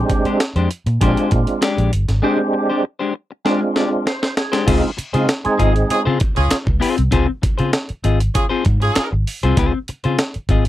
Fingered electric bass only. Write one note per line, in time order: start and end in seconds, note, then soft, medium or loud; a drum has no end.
0.25 muted fingered electric bass stroke soft
0.56 0.67 F2 medium
0.86 0.97 A#2 medium
1.02 1.13 A#1 medium
1.32 1.44 A#2 loud
1.78 1.89 A#1 medium
1.93 2.05 G1 medium
2.09 2.20 G#1 medium
4.68 4.80 C#2 loud
4.98 muted fingered electric bass stroke soft
5.14 5.25 C#3 medium
5.46 muted fingered electric bass stroke soft
5.60 5.83 G#1 medium
5.90 muted fingered electric bass stroke medium
6.07 6.17 C#3 loud
6.37 6.48 C#2 medium
6.67 6.78 C#2 medium
6.99 7.09 C2 loud
7.13 7.25 C#2 loud
7.43 muted fingered electric bass stroke soft
7.60 7.70 C#3 medium
7.90 muted fingered electric bass stroke soft
8.05 8.27 G#1 loud
8.66 8.89 G#2 loud
8.97 muted fingered electric bass stroke soft
9.12 9.23 G#1 medium
9.43 9.54 C2 loud
9.57 9.69 C#2 loud
9.89 muted fingered electric bass stroke soft
10.05 10.15 C#3 loud
10.36 muted fingered electric bass stroke soft
10.49 10.69 G#1 medium